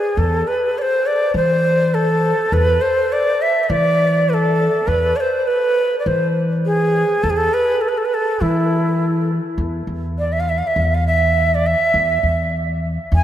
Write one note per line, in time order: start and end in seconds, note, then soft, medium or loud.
0.00 0.19 G#4 medium
0.17 0.41 E2 medium
0.17 0.49 A4 medium
0.47 0.80 B4 medium
0.78 1.08 C5 medium
0.78 0.83 D5 medium
1.07 1.35 D5 medium
1.34 2.31 E3 medium
1.34 1.96 C5 loud
1.94 2.55 A4 medium
2.52 2.76 E2 medium
2.52 2.83 B4 loud
2.81 3.14 C5 medium
3.13 3.43 D5 loud
3.42 3.63 E5 medium
3.63 3.71 E5 medium
3.69 4.67 E3 loud
3.69 4.31 D5 loud
4.29 4.35 B4 medium
4.34 4.89 A4 medium
4.87 5.12 E2 medium
4.87 5.18 B4 loud
5.16 5.21 D5 medium
5.20 5.49 C5 medium
5.47 5.98 B4 medium
5.99 6.09 D5 medium
6.06 7.03 E3 medium
6.06 6.36 C5 medium
6.66 7.25 G#4 medium
7.23 7.47 E2 medium
7.23 7.31 A4 loud
7.30 7.38 G#4 medium
7.37 7.55 A4 loud
7.54 7.83 B4 loud
7.81 7.90 A4 medium
7.89 7.99 B4 medium
7.98 8.07 A4 medium
8.05 8.16 B4 medium
8.14 8.42 A4 medium
8.41 9.38 E3 medium
8.41 9.29 E4 medium
9.58 9.82 E2 medium
9.87 10.60 E2 medium
10.19 10.34 D5 medium
10.33 10.42 E5 medium
10.40 10.51 F5 medium
10.49 10.60 E5 medium
10.58 10.69 F5 medium
10.67 10.96 E5 medium
10.76 11.73 E2 medium
10.95 11.06 F5 medium
11.07 11.56 E5 medium
11.55 11.68 D5 medium
11.67 12.55 E5 medium
11.94 12.18 E2 medium
12.23 12.96 E2 medium
13.12 13.24 E2 medium
13.12 13.24 G#5 medium